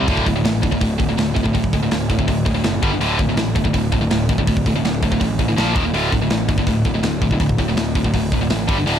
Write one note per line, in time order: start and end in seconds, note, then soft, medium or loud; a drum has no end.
0.08 0.25 D1 medium
0.08 0.26 D2 medium
0.08 0.26 A2 medium
0.08 0.26 D3 medium
0.08 kick loud
0.08 open hi-hat medium
0.17 kick medium
0.26 0.44 D1 medium
0.26 0.35 D2 medium
0.26 0.35 A2 medium
0.26 kick medium
0.26 open hi-hat medium
0.36 0.43 D2 medium
0.36 0.43 A2 medium
0.44 0.62 A1 medium
0.44 0.61 D2 medium
0.44 0.61 A2 medium
0.44 snare loud
0.44 open hi-hat medium
0.62 0.81 G1 medium
0.62 0.71 D2 medium
0.62 0.70 A2 medium
0.62 kick medium
0.62 open hi-hat medium
0.71 0.80 D2 medium
0.71 0.81 A2 medium
0.71 kick medium
0.81 0.99 D1 medium
0.81 0.98 D2 medium
0.81 0.97 A2 medium
0.81 kick loud
0.81 open hi-hat medium
0.98 1.16 D1 medium
0.98 1.08 D2 medium
0.98 1.08 A2 medium
0.98 kick medium
0.98 open hi-hat medium
1.09 1.17 D2 medium
1.09 1.17 A2 medium
1.17 1.35 D1 medium
1.17 1.34 D2 medium
1.17 1.34 A2 medium
1.17 snare loud
1.17 open hi-hat medium
1.35 1.54 D1 medium
1.35 1.43 D2 medium
1.35 1.43 A2 medium
1.35 kick medium
1.35 open hi-hat medium
1.44 1.53 D2 medium
1.44 1.54 A2 medium
1.44 kick medium
1.54 1.72 D1 medium
1.54 1.71 D2 medium
1.54 1.71 A2 medium
1.54 kick medium
1.54 open hi-hat medium
1.64 kick medium
1.73 1.90 D1 medium
1.73 1.81 D2 medium
1.73 1.82 A2 medium
1.73 kick medium
1.73 open hi-hat medium
1.83 1.90 D2 medium
1.83 1.90 A2 medium
1.91 2.26 D1 medium
1.91 2.08 D2 medium
1.91 2.08 A2 medium
1.91 snare loud
1.91 open hi-hat medium
2.10 2.17 D2 medium
2.10 2.17 A2 medium
2.10 kick medium
2.10 open hi-hat medium
2.18 2.26 D2 medium
2.18 2.27 A2 medium
2.18 kick medium
2.27 2.63 D1 medium
2.27 2.44 D2 medium
2.27 2.44 A2 medium
2.27 kick medium
2.27 open hi-hat medium
2.45 2.54 D2 medium
2.45 2.53 A2 medium
2.45 kick medium
2.45 open hi-hat medium
2.54 2.62 D2 medium
2.54 2.63 A2 medium
2.64 2.82 F#1 medium
2.64 2.80 D2 medium
2.64 2.81 A2 medium
2.64 snare loud
2.64 open hi-hat medium
2.82 3.00 G1 medium
2.82 2.90 G2 medium
2.82 2.91 D3 medium
2.82 2.91 G3 medium
2.82 kick loud
2.82 open hi-hat medium
2.92 3.00 G2 medium
2.92 3.00 D3 medium
3.01 3.18 D1 medium
3.01 3.18 D2 medium
3.01 3.18 A2 loud
3.01 3.18 D3 loud
3.01 open hi-hat medium
3.19 3.35 D1 medium
3.19 3.28 D2 medium
3.19 3.28 A2 medium
3.19 kick medium
3.19 open hi-hat medium
3.29 3.36 D2 medium
3.29 3.37 A2 medium
3.36 3.54 A1 medium
3.36 3.54 D2 medium
3.36 3.54 A2 medium
3.36 snare loud
3.36 open hi-hat medium
3.55 3.73 G1 medium
3.55 3.64 D2 medium
3.55 3.63 A2 medium
3.55 kick medium
3.55 open hi-hat medium
3.64 3.72 D2 medium
3.64 3.73 A2 medium
3.64 kick medium
3.73 3.91 D1 medium
3.73 3.90 D2 medium
3.73 3.91 A2 medium
3.73 kick medium
3.73 open hi-hat medium
3.92 4.10 D1 medium
3.92 4.00 D2 medium
3.92 4.00 A2 medium
3.92 kick medium
3.92 open hi-hat medium
4.01 4.09 D2 medium
4.01 4.10 A2 medium
4.11 4.28 D1 medium
4.11 4.27 D2 medium
4.11 4.28 A2 medium
4.11 snare loud
4.11 open hi-hat medium
4.29 4.46 D1 medium
4.29 4.38 D2 medium
4.29 4.37 A2 medium
4.29 kick medium
4.29 open hi-hat medium
4.38 4.46 D2 medium
4.38 4.47 A2 medium
4.38 kick medium
4.47 4.65 D1 medium
4.47 4.64 D2 medium
4.47 4.64 A2 medium
4.47 kick loud
4.47 open hi-hat medium
4.57 kick medium
4.66 4.82 D1 medium
4.66 4.75 D2 medium
4.66 4.74 A2 medium
4.66 kick medium
4.66 open hi-hat medium
4.76 4.84 D2 medium
4.76 4.84 A2 medium
4.83 5.18 D1 loud
4.83 5.01 D2 medium
4.83 5.01 A2 medium
4.83 snare loud
4.83 open hi-hat medium
5.03 5.12 D2 medium
5.03 5.11 A2 medium
5.03 kick medium
5.03 open hi-hat medium
5.12 5.19 D2 medium
5.12 5.19 A2 medium
5.12 kick medium
5.20 5.56 A1 medium
5.20 5.37 D2 medium
5.20 5.37 A2 medium
5.20 kick medium
5.20 open hi-hat medium
5.39 5.47 D2 medium
5.39 5.47 A2 medium
5.39 kick medium
5.39 open hi-hat medium
5.48 5.57 D2 medium
5.48 5.57 A2 medium
5.57 5.74 A#1 medium
5.57 5.75 A#2 medium
5.57 5.75 F3 medium
5.57 5.75 A#3 medium
5.57 snare loud
5.57 open hi-hat medium
5.76 5.93 D#1 medium
5.76 5.84 D#2 medium
5.76 5.84 A#2 medium
5.76 5.84 D#3 medium
5.76 kick loud
5.76 open hi-hat medium
5.85 5.93 D#2 medium
5.85 5.94 A#2 medium
5.93 6.11 D1 medium
5.93 6.11 D2 medium
5.93 6.12 A2 medium
5.93 6.12 D3 medium
5.93 open hi-hat medium
6.12 6.29 D1 medium
6.12 6.21 D2 medium
6.12 6.21 A2 medium
6.12 kick medium
6.12 open hi-hat medium
6.22 6.30 D2 medium
6.22 6.30 A2 medium
6.29 6.48 A1 medium
6.29 6.47 D2 medium
6.29 6.47 A2 medium
6.29 snare loud
6.29 open hi-hat medium
6.48 6.66 G1 medium
6.48 6.57 D2 medium
6.48 6.57 A2 medium
6.48 kick medium
6.48 open hi-hat soft
6.58 6.66 D2 medium
6.58 6.66 A2 medium
6.58 kick medium
6.67 6.84 D1 medium
6.67 6.84 D2 medium
6.67 6.84 A2 medium
6.67 kick loud
6.67 open hi-hat medium
6.85 7.02 D1 medium
6.85 6.93 D2 medium
6.85 6.93 A2 medium
6.85 kick medium
6.85 open hi-hat medium
6.94 7.02 D2 medium
6.94 7.02 A2 medium
7.03 7.21 D1 medium
7.03 7.20 D2 medium
7.03 7.20 A2 medium
7.03 snare loud
7.03 open hi-hat medium
7.21 7.39 D1 medium
7.21 7.32 D2 medium
7.21 7.31 A2 medium
7.21 kick medium
7.21 open hi-hat medium
7.31 7.40 D2 medium
7.31 7.40 A2 medium
7.31 kick medium
7.40 7.58 D1 medium
7.40 7.58 D2 medium
7.40 7.57 A2 medium
7.40 kick medium
7.40 open hi-hat medium
7.49 kick medium
7.58 7.75 D1 medium
7.58 7.67 D2 medium
7.58 7.67 A2 medium
7.58 kick medium
7.58 open hi-hat medium
7.68 7.76 D2 medium
7.68 7.76 A2 medium
7.76 8.12 D1 medium
7.76 7.94 D2 medium
7.76 7.94 A2 medium
7.76 snare medium
7.76 open hi-hat medium
7.95 8.04 D2 medium
7.95 8.04 A2 medium
7.95 kick medium
7.95 open hi-hat medium
8.04 8.13 D2 medium
8.04 8.13 A2 medium
8.04 kick medium
8.14 8.49 D1 medium
8.14 8.31 D2 medium
8.14 8.31 A2 medium
8.14 kick medium
8.14 open hi-hat medium
8.32 8.41 D2 medium
8.32 8.40 A2 medium
8.32 kick medium
8.32 open hi-hat medium
8.41 8.49 D2 medium
8.41 8.49 A2 medium
8.50 8.68 A1 medium
8.50 8.67 D2 medium
8.50 8.67 A2 medium
8.50 snare loud
8.50 open hi-hat medium
8.68 8.86 G1 medium
8.68 8.77 G2 medium
8.68 8.77 D3 medium
8.68 8.77 G3 medium
8.68 kick loud
8.68 open hi-hat medium
8.78 8.86 G2 medium
8.78 8.86 D3 medium
8.86 8.99 D1 medium
8.86 8.99 D2 medium
8.86 8.99 A2 medium
8.86 8.99 D3 loud
8.86 open hi-hat medium